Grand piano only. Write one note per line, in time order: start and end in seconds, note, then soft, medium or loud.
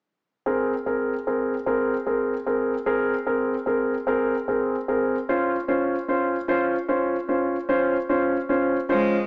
0.46 0.73 C4 soft
0.46 0.73 G#4 soft
0.46 0.73 A#4 soft
0.86 1.13 C4 soft
0.86 1.13 G#4 soft
0.86 1.13 A#4 soft
1.27 1.53 C4 soft
1.27 1.54 G#4 soft
1.27 1.54 A#4 soft
1.66 1.93 C4 medium
1.66 1.94 G#4 soft
1.66 1.94 A#4 medium
2.07 2.33 C4 soft
2.07 2.33 G#4 soft
2.07 2.34 A#4 soft
2.47 2.73 C4 soft
2.47 2.73 G#4 soft
2.47 2.74 A#4 soft
2.86 3.13 C4 medium
2.86 3.13 G#4 medium
2.86 3.14 A#4 medium
3.27 3.54 C4 soft
3.27 3.54 G#4 soft
3.27 3.54 A#4 medium
3.66 3.93 C4 soft
3.66 3.94 G#4 soft
3.66 3.94 A#4 soft
4.07 4.34 C4 medium
4.07 4.34 G#4 soft
4.07 4.34 A#4 medium
4.48 4.75 C4 soft
4.48 4.75 G#4 soft
4.48 4.75 A#4 soft
4.88 5.15 C4 soft
4.88 5.15 G#4 soft
4.88 5.15 A#4 soft
5.29 5.55 C#4 medium
5.29 5.55 F4 medium
5.29 5.55 C5 medium
5.68 5.95 C#4 medium
5.68 5.95 F4 soft
5.68 5.95 C5 medium
6.08 6.35 C#4 soft
6.08 6.35 F4 soft
6.08 6.35 C5 medium
6.48 6.75 C#4 medium
6.48 6.75 F4 medium
6.48 6.75 C5 medium
6.88 7.15 C#4 soft
6.88 7.15 F4 soft
6.88 7.15 C5 medium
7.29 7.55 C#4 soft
7.29 7.56 F4 soft
7.29 7.56 C5 medium
7.69 7.95 C#4 medium
7.69 7.96 F4 medium
7.69 7.96 C5 medium
8.09 8.36 C#4 medium
8.09 8.36 F4 soft
8.09 8.36 C5 medium
8.49 8.76 C#4 medium
8.49 8.76 F4 soft
8.49 8.76 C5 medium
8.89 9.16 C#4 medium
8.89 9.16 F4 medium
8.89 9.16 C5 medium